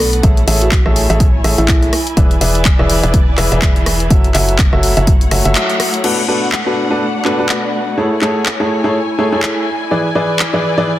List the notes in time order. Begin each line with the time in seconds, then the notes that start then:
Already playing: B1 A3 B3 D4 F#4 A4 B4 D5 F#5
0.13 closed hi-hat
0.23 A1 A3 G#4 A4 C#5 E5, kick, closed hi-hat
0.37 closed hi-hat
0.48 A1 A3 G#4 A4 C#5 E5, open hi-hat
0.61 F#4, closed hi-hat
0.72 kick, clap, closed hi-hat
0.86 A1 A3 G#4 A4 C#5 E5 G#5, cross-stick
0.91 C#5
0.96 open hi-hat
1.10 A1 A3 G#4 A4 C#5 E5, closed hi-hat
1.20 kick, closed hi-hat
1.44 A1 A3 G#4 A4 C#5 E5, cross-stick, open hi-hat
1.58 A1 A3 E4 G#4 A4 C#5 E5, closed hi-hat
1.68 kick, clap, closed hi-hat
1.83 closed hi-hat
1.93 cross-stick, open hi-hat
2.07 closed hi-hat
2.17 E1 E3 G#4 B4 D5 E5, kick, closed hi-hat
2.23 B4
2.28 D5, closed hi-hat
2.41 E1 E3 G#4 B4 D5 E5, open hi-hat
2.55 closed hi-hat
2.65 kick, clap, closed hi-hat
2.79 E1 E3 G#4 B4 D5 E5, cross-stick
2.90 open hi-hat
3.03 E1 E3 G#4 B4 D5 E5, closed hi-hat
3.14 kick, closed hi-hat
3.38 E1 E3 G#4 B4 D5 E5, cross-stick, clap, open hi-hat
3.52 E1 E3 G#4 B4 D5 E5, closed hi-hat
3.62 kick, clap, closed hi-hat
3.76 closed hi-hat
3.86 cross-stick, open hi-hat
4.00 closed hi-hat
4.10 F#1 F#3 F#4 A4 C#5 E5, kick, closed hi-hat
4.24 closed hi-hat
4.31 F#1 F#3 A3 F#4 A4 C#5 E5, clap, open hi-hat
4.49 closed hi-hat
4.59 kick, clap, closed hi-hat
4.73 F#1 F#3 F#4 A4 C#5 E5, cross-stick
4.78 F#5
4.83 open hi-hat
4.97 F#1 F#3 F#4 A4 C#5 E5, closed hi-hat
5.07 kick, closed hi-hat
5.21 closed hi-hat
5.31 F#1 F#3 F#4 A4 C#5 E5, cross-stick, open hi-hat
5.45 F#1 F#3 F#4 A4 C#5 E5, closed hi-hat
5.55 clap, closed hi-hat
5.70 closed hi-hat
5.80 cross-stick, open hi-hat
5.94 closed hi-hat
6.04 B2 D4 F#4 A4 B4, crash
6.28 B2 D4 F#4 A4 B4
6.52 clap
6.66 B2 D4 F#4 A4 B4
6.91 B2 D4 F#4 A4 B4
7.25 B2 D4 F#4 A4 B4, clap
7.39 B2 D4 F#4 A4 B4
7.49 clap
7.97 A3 E4 G#4 A4 C#5
8.05 C#5
8.15 G#5
8.22 A3 E4 G#4 A4 C#5, clap
8.46 clap
8.60 A3 E4 G#4 A4 C#5
8.84 A3 E4 G#4 A4 C#5
9.19 A3 E4 G#4 A4 C#5
9.32 A3 E4 G#4 A4 C#5
9.42 clap
9.81 D5
9.90 E3 E4 G#4 B4 D5
10.15 E3 E4 G#4 B4 D5
10.39 clap
10.53 E3 E4 G#4 B4 D5
10.78 E3 E4 G#4 B4 D5